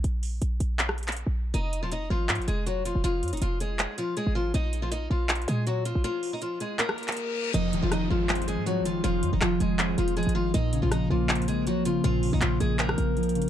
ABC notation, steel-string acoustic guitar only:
X:1
M:4/4
L:1/16
Q:1/4=160
K:Bbm
V:1 name="Steel-string acoustic guitar"
z16 | [Ee]3 [F,F] [Ee]2 [F,F]4 [A,A]2 [G,G]2 [F,F]2 | [F,F]3 [Ee] [F,F]2 [A,A]4 [F,F]2 [A,A]2 [F,F]2 | [Ee]3 [F,F] [Ee]2 [F,F]4 [A,A]2 [G,G]2 [F,F]2 |
[F,F]3 [Ee] [F,F]2 [A,A]2 [B,B]8 | [Ee]3 [F,F] [Ee]2 [F,F]4 [A,A]2 [G,G]2 [F,F]2 | [F,F]3 [Ee] [F,F]2 [A,A]4 [F,F]2 [A,A]2 [F,F]2 | [Ee]3 [F,F] [Ee]2 [F,F]4 [A,A]2 [G,G]2 [F,F]2 |
[F,F]3 [Ee] [F,F]2 [A,A]2 [B,B]8 |]